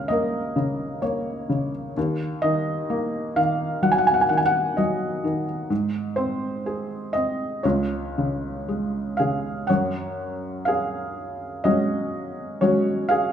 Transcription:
Already playing: C#2 C#3 C#4 A#4 F5 F#5
0.08 A#3 A#4 D#5
0.56 C#3
1.02 A#3 C#5
1.49 C#3
1.97 D#2
2.42 D#3 D#5
2.90 A#3
3.36 D#3 F5
3.83 F#3 F#5
3.92 G#5
3.98 F#5
4.07 G#5
4.14 F#5
4.21 G#5
4.29 D#3 F#5
4.37 G#5
4.46 F#5
4.77 F#3 D#5
5.24 D#3
5.70 G#2
6.16 C4 C5
6.66 G#4
7.13 C4 D#5
7.63 C#2 F4 C#5
8.18 C#3
8.69 G#3
9.17 C#3 G#4 F5
9.67 F#2 C#5 F#5
10.65 G#4 F5
11.64 F#3 G#3 C#4 F#4 D#5
12.61 F#3 G#3 C#4 F#4 C#5
13.09 G#4 F5

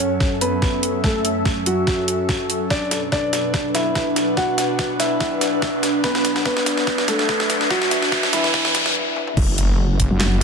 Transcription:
Already playing: F#2 F#3 C#4 A4 C#5 F#5
0.02 E5
0.20 kick, snare
0.41 B3 B4, closed hi-hat
0.62 kick, snare
0.83 closed hi-hat
1.04 A3 A4, kick, snare
1.25 closed hi-hat
1.45 kick, snare
1.66 F#3 F#4, closed hi-hat
1.87 kick, snare
2.08 closed hi-hat
2.29 kick, snare
2.50 closed hi-hat
2.70 B2 D4 B4 D5, kick, snare, riser
2.89 B4, snare, closed hi-hat
3.12 D4 D5, kick, snare
3.33 snare, closed hi-hat
3.54 F#5, kick, snare
3.75 E4 E5, snare, closed hi-hat
3.95 kick, snare
4.16 snare, closed hi-hat
4.37 F#4 F#5, kick, snare
4.58 snare, closed hi-hat
4.79 kick, snare
5.00 E4 E5, snare, closed hi-hat
5.20 kick, snare
5.41 snare, closed hi-hat
5.62 kick, snare
5.83 snare, closed hi-hat
6.04 B3 B4, kick, snare
6.15 snare
6.25 snare, closed hi-hat
6.36 snare
6.45 B3 B4, kick, snare
6.57 E5, snare
6.66 snare, closed hi-hat
6.77 snare
6.87 kick, snare
6.98 snare
7.08 A3 A4, snare, closed hi-hat
7.19 snare
7.29 kick, snare
7.40 snare
7.50 snare, closed hi-hat
7.61 snare
7.70 F#3 F#4, kick, snare
7.82 snare
7.91 snare, closed hi-hat
8.02 snare
8.12 kick, snare
8.23 snare
8.33 E3 E4, snare, closed hi-hat
8.44 snare
8.54 kick, snare
8.65 snare
8.75 snare, closed hi-hat
8.86 snare
9.16 high tom
9.27 mid tom
9.37 F#1 F#3 C#4 A4 F#5, kick, crash, impact
9.48 F#1
9.58 closed hi-hat
10.00 kick, closed hi-hat
10.11 F#1
10.20 snare, clap

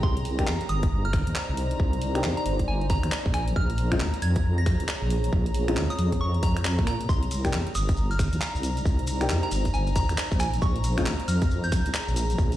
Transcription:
Already playing: A#5
0.03 C2 D#4 C6, kick
0.17 closed hi-hat
0.25 C5, open hi-hat
0.39 A#3 D4 D#4 G4, finger snap, kick, closed hi-hat
0.47 F2, clap
0.61 D5, closed hi-hat
0.69 G1 D#6, open hi-hat
0.83 kick, closed hi-hat
1.05 F6, closed hi-hat
1.13 finger snap, kick, open hi-hat
1.27 D#2, closed hi-hat
1.35 clap
1.49 C2
1.57 open hi-hat
1.71 closed hi-hat
1.80 C2, kick
1.93 closed hi-hat
2.02 open hi-hat
2.15 A#3 D4 D#4 G4, finger snap, closed hi-hat
2.24 F2, clap
2.37 A#5, closed hi-hat
2.46 G1, open hi-hat
2.59 kick, closed hi-hat
2.68 G#5
2.81 closed hi-hat
2.90 A#5, kick, open hi-hat
3.03 D#2, finger snap, closed hi-hat
3.12 clap
3.26 A#1, kick
3.34 G#4 G#5, finger snap, open hi-hat
3.48 closed hi-hat
3.55 A#1 C#5 F6, kick
3.70 closed hi-hat
3.78 open hi-hat
3.92 G#3 C4 C#4 F4, finger snap, kick, closed hi-hat
4.00 D#2, clap
4.14 closed hi-hat
4.22 F2 G#6, open hi-hat
4.36 kick, closed hi-hat
4.58 A#6, closed hi-hat
4.66 finger snap, kick, open hi-hat
4.80 C#2, closed hi-hat
4.88 clap
5.02 A#1
5.10 open hi-hat
5.24 closed hi-hat
5.33 A#1, kick
5.46 closed hi-hat
5.54 open hi-hat
5.68 G#3 C4 C#4 F4, finger snap, closed hi-hat
5.77 D#2, clap
5.90 D#6, open hi-hat
5.99 F2, open hi-hat
6.12 kick, closed hi-hat
6.21 C#6
6.34 closed hi-hat
6.43 A#5, kick, open hi-hat
6.57 finger snap, closed hi-hat
6.65 clap
6.79 A#2, kick, closed hi-hat
6.87 A#5, finger snap, open hi-hat
7.01 closed hi-hat
7.09 C2 D#4 A#5 C6, kick, maracas
7.19 D5, closed hi-hat
7.31 open hi-hat, maracas
7.44 A#3 D4 D#4 G4 C5, finger snap, kick, closed hi-hat, maracas
7.53 F2, clap, maracas
7.67 closed hi-hat
7.75 G1 D#6, open hi-hat, maracas
7.84 A#5
7.89 kick, closed hi-hat, maracas
7.97 maracas
8.11 F6, closed hi-hat, maracas
8.19 finger snap, kick, open hi-hat, maracas
8.33 D#2, closed hi-hat, maracas
8.41 clap, maracas
8.55 C2, maracas
8.63 open hi-hat, maracas
8.77 closed hi-hat, maracas
8.85 C2, kick, maracas
8.99 closed hi-hat
9.07 open hi-hat, maracas
9.21 A#3 D4 D#4 G4, finger snap, closed hi-hat, maracas
9.29 F2, clap, maracas
9.43 A#5, closed hi-hat
9.51 G1, open hi-hat, maracas
9.65 kick, closed hi-hat, maracas
9.74 G#5, maracas
9.87 closed hi-hat, maracas
9.96 A#5, kick, open hi-hat, maracas
10.09 D#2, finger snap, closed hi-hat, maracas
10.18 clap, maracas
10.32 A#1, kick, maracas
10.40 G#4 G#5, finger snap, open hi-hat, maracas
10.54 closed hi-hat, maracas
10.62 A#1 C#6, kick, maracas
10.73 C#5, closed hi-hat
10.84 open hi-hat, maracas
10.98 G#3 C4 C#4 F4, finger snap, kick, closed hi-hat, maracas
11.06 D#2, clap, maracas
11.20 closed hi-hat
11.28 F2 F6, open hi-hat, maracas
11.42 kick, closed hi-hat, maracas
11.51 maracas
11.64 G6, closed hi-hat, maracas
11.72 finger snap, kick, open hi-hat, maracas
11.86 C#2, closed hi-hat, maracas
11.94 clap, maracas
12.08 A#1, maracas
12.16 open hi-hat, maracas
12.30 closed hi-hat, maracas
12.38 A#1, kick, maracas
12.52 closed hi-hat, maracas

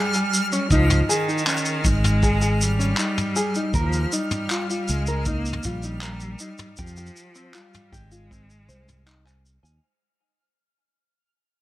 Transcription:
Already playing: G3 G#4 F6
0.14 G#5, shaker
0.34 shaker
0.52 C#4, shaker
0.71 C#2 F3 D#4, kick, shaker
0.90 mid tom, shaker
1.09 D#3 G#4, shaker
1.28 D#4, shaker
1.38 shaker
1.47 C#4, clap, shaker
1.57 shaker
1.65 shaker
1.85 G#1 G#3 D#4, kick, shaker
2.04 mid tom, shaker
2.23 G#4, kick, shaker
2.42 G#4, shaker
2.61 G3, shaker
2.79 C#4, shaker
2.97 D#4, clap, shaker
3.18 mid tom, shaker
3.36 G#4, shaker
3.55 D#4, shaker
3.74 D#2 F3 A#4, kick, shaker
3.93 shaker
4.12 G3 D#4, shaker
4.31 mid tom, shaker
4.50 F4, clap, shaker
4.70 F4, shaker
4.88 C#2 G#3, shaker
5.07 A#4, shaker
5.25 A#3 D#4, kick, shaker
5.46 shaker
5.53 mid tom
5.63 A#1 G3 F4, kick, shaker
5.83 D#4, shaker
6.01 A#4, clap, shaker
6.20 shaker
6.39 D#4, shaker
6.58 mid tom, shaker
6.77 F2 F3 G4, kick, shaker
6.87 shaker
6.97 G4, shaker
7.06 shaker
7.17 shaker
7.35 C4, shaker
7.54 G3 F4, clap, shaker
7.74 mid tom, shaker
7.92 G#1 G#3 G4, kick, shaker
8.11 F4, shaker
8.31 C4, kick, shaker
8.50 shaker
8.68 C2 C5, shaker
8.89 mid tom, shaker
9.06 D#4, clap, shaker
9.25 G#5, clap, shaker
9.46 shaker
9.63 D#2 G#5, shaker

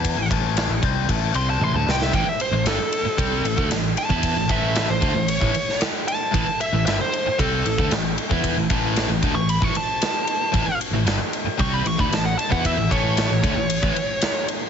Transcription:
Already playing: E2 E3 B3 E4 A5
0.05 kick, ride
0.16 A1 A2 E3
0.30 A1 A2 E3 A3, kick, ride
0.57 snare, ride
0.69 A1 A2 E3
0.82 C2 C3 G3 C4, kick, ride
1.09 A1 A2 E3 A3, kick, ride
1.33 C2 C3 G3 C4 C6, ride
1.50 A5
1.60 A1 A2 E3 C6, high tom
1.73 D2 D3 A3 A5, mid tom
1.86 C2 C3 G3 C4, snare
1.91 G5
2.02 E5, snare
2.13 A1 A2 E3 G5, kick, ride
2.27 E5, muted distorted electric guitar stroke, muted overdriven electric guitar stroke
2.40 C5, ride
2.51 A1 A2 E3
2.64 G1 G2 D3 A4, snare, ride
2.78 muted picked electric bass stroke, muted overdriven electric guitar stroke, muted distorted electric guitar stroke
2.92 ride
3.03 muted picked electric bass stroke, muted overdriven electric guitar stroke, muted distorted electric guitar stroke
3.17 C2 C3 G3 C4, kick, ride
3.43 A1 A2 E3, ride
3.56 D2 D3 A3, kick
3.69 A1 A2 E3, snare, ride
3.97 A5, ride
4.09 E2 E3 B3 E4, kick
4.23 kick, ride
4.35 A1 A2 E3
4.48 A1 A2 E3 A3 E5, kick, ride
4.75 E5, snare, ride
4.88 A1 A2 E3 C5
5.00 D2 D3 A3, kick, ride
5.14 A1 A2 E3
5.28 C#5, ride
5.40 A1 A2 E3, kick
5.52 muted overdriven electric guitar stroke, muted picked electric bass stroke, muted distorted electric guitar stroke, ride
5.69 snare
5.81 snare, ride
6.08 A5, ride
6.31 A1 A2 E3, kick, ride
6.46 muted overdriven electric guitar stroke, muted distorted electric guitar stroke
6.61 E5, ride
6.72 A1 A2 E3
6.85 G1 G2 D3 E5, snare, ride
6.99 C5, muted overdriven electric guitar stroke, muted picked electric bass stroke, muted distorted electric guitar stroke
7.13 ride
7.26 muted picked electric bass stroke, muted overdriven electric guitar stroke, muted distorted electric guitar stroke
7.39 C2 C3 G3 C4 A4, kick, ride
7.65 A1 A2 E3, ride
7.78 D2 D3 A3, kick
7.91 A1 A2 E3, snare, ride
8.18 ride
8.30 E2 E3 B3 E4, kick
8.44 kick, ride
8.56 A1 A2 E3
8.70 A1 A2 E3 A3, kick, ride
8.96 snare, ride
9.08 A1 A2 E3
9.22 D2 D3 A3, kick, ride
9.34 A1 A2 E3 C#6
9.49 B5, ride
9.61 A1 A2 E3 C#6, kick
9.75 A5, muted overdriven electric guitar stroke, muted distorted electric guitar stroke, ride
10.02 snare, ride
10.27 ride
10.52 A1 A2 E3, kick, ride
10.67 muted distorted electric guitar stroke, muted overdriven electric guitar stroke
10.81 ride
10.91 A1 A2 E3
11.05 G1 G2 D3, snare, ride
11.18 muted picked electric bass stroke, muted distorted electric guitar stroke, muted overdriven electric guitar stroke
11.33 ride
11.44 muted picked electric bass stroke, muted overdriven electric guitar stroke, muted distorted electric guitar stroke
11.58 C2 C3 G3 C4 C#6, kick, ride
11.74 B5
11.84 A1 A2 E3 C#6, ride
11.97 D2 D3 A3 B5, kick
12.09 A1 A2 E3, ride
12.13 A5, snare
12.26 F#5
12.38 A5, ride
12.49 E2 E3 B3 E4 F#5, kick
12.65 E5, kick, ride
12.77 A1 A2 E3
12.89 A1 A2 E3 A3 C#5, kick, ride
13.17 snare, ride
13.29 A1 A2 E3
13.42 D2 D3 A3, kick, ride
13.55 A1 A2 E3
13.70 ride
13.82 A1 A2 E3, kick
13.95 muted overdriven electric guitar stroke, muted distorted electric guitar stroke, ride
14.22 snare, ride
14.48 ride

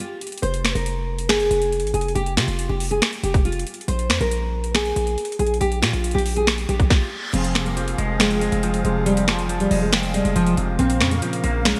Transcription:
0.00 F4
0.21 closed hi-hat
0.27 closed hi-hat
0.32 closed hi-hat
0.38 closed hi-hat
0.42 F1 C5, closed hi-hat
0.54 closed hi-hat
0.65 finger snap, snare, closed hi-hat
0.75 F1 A#4, closed hi-hat
0.86 closed hi-hat
1.19 closed hi-hat
1.29 G1 G#4, finger snap, snare, closed hi-hat
1.40 F1, closed hi-hat
1.51 F1, closed hi-hat
1.62 closed hi-hat
1.72 closed hi-hat
1.80 G#1, closed hi-hat
1.87 closed hi-hat
1.94 F1 G#4, closed hi-hat
2.01 closed hi-hat
2.08 closed hi-hat
2.15 F1 G4, closed hi-hat
2.26 closed hi-hat
2.37 C3 F4, finger snap, snare, closed hi-hat
2.48 F1, closed hi-hat
2.59 closed hi-hat
2.69 F1 G4
2.80 open hi-hat
2.91 G#4, closed hi-hat
3.02 finger snap, snare, closed hi-hat
3.13 closed hi-hat
3.23 F1 G4, closed hi-hat
3.34 kick, closed hi-hat
3.45 F4, closed hi-hat
3.52 closed hi-hat
3.59 closed hi-hat
3.67 closed hi-hat
3.74 closed hi-hat
3.81 closed hi-hat
3.88 A#1 C5, closed hi-hat
3.99 closed hi-hat
4.10 F2, finger snap, snare, closed hi-hat
4.21 A#1 A#4, closed hi-hat
4.31 closed hi-hat
4.64 closed hi-hat
4.75 G#4, finger snap, snare, closed hi-hat
4.85 closed hi-hat
4.96 A#1, closed hi-hat
5.07 closed hi-hat
5.18 closed hi-hat
5.25 closed hi-hat
5.32 closed hi-hat
5.39 A#1 G#4, closed hi-hat
5.47 closed hi-hat
5.54 closed hi-hat
5.61 A#1 G4, closed hi-hat
5.72 closed hi-hat
5.82 A#2 F4, finger snap, snare, closed hi-hat
5.93 A#1, closed hi-hat
6.04 closed hi-hat
6.11 A#1 G4, closed hi-hat
6.18 closed hi-hat
6.26 open hi-hat
6.36 G#4, closed hi-hat
6.47 finger snap, snare, closed hi-hat, reverse cymbal
6.58 closed hi-hat
6.69 A#1 G4, closed hi-hat
6.80 kick, closed hi-hat
6.90 F4, kick, snare
7.33 F1 F2 F3 C4 G#4 F5, closed hi-hat, crash
7.44 closed hi-hat
7.55 C3, finger snap, snare, closed hi-hat
7.65 A#3, closed hi-hat
7.77 F3, closed hi-hat
7.88 closed hi-hat
7.98 F1 G#3, closed hi-hat
8.20 G#3 C4, finger snap, snare, closed hi-hat
8.31 closed hi-hat
8.41 G#3, closed hi-hat
8.52 F1, closed hi-hat
8.63 F3, closed hi-hat
8.74 closed hi-hat
8.84 F1 C3 G#3, closed hi-hat
9.06 F2 G3, closed hi-hat
9.17 closed hi-hat
9.28 C3 F3, finger snap, snare, closed hi-hat
9.39 closed hi-hat
9.49 F3, closed hi-hat
9.60 G3, closed hi-hat
9.71 F1 G#3, open hi-hat
9.81 G#3
9.93 C4, finger snap, snare, closed hi-hat
10.03 closed hi-hat
10.14 G3 G#3, closed hi-hat
10.25 F1, closed hi-hat
10.36 F1 F3, closed hi-hat
10.46 closed hi-hat
10.57 F1 C3, closed hi-hat
10.79 A#1 A#2 A#3 C4 A#4, closed hi-hat
10.90 closed hi-hat
11.01 F2 C#3, finger snap, snare, closed hi-hat
11.11 A#3, closed hi-hat
11.22 F3, closed hi-hat
11.33 closed hi-hat
11.44 A#1 A#3, closed hi-hat
11.65 G#3 C#4, finger snap, snare, closed hi-hat
11.76 closed hi-hat

